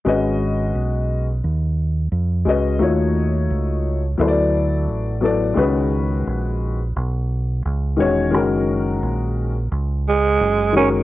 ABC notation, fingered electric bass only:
X:1
M:4/4
L:1/8
Q:"Swing 16ths" 1/4=87
K:G#dor
V:1 name="Fingered electric bass" clef=bass
G,,,2 B,,,2 D,,2 E,, C,, | D,,2 C,,2 =D,,2 =A,,,2 | C,,2 A,,,2 B,,,2 C,, =E,,, | F,,,2 A,,,2 C,,2 F,,,2 |]